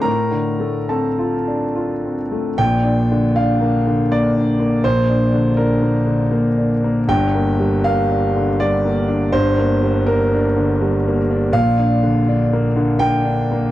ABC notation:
X:1
M:3/4
L:1/8
Q:1/4=80
K:Bb
V:1 name="Grand piano"
[Bb]2 [Aa]3 z | g2 f2 d2 | c2 B3 z | g2 f2 d2 |
c2 B3 z | f4 g2 |]
V:2 name="Grand piano"
(3[A,,A,] D, A, (3C F D (3F C A, | (3[B,,,B,,] D D, (3D B, D, (3B, D B, | (3[B,,,B,,] D D, (3D B, D, (3B, D B, | (3[G,,,G,,] B, G, (3B, D D, (3G, B, D |
(3[G,,,G,,] B, G, (3B, D D, (3G, B, D | (3[B,,,B,,] D D, (3D B, D, (3B, D B, |]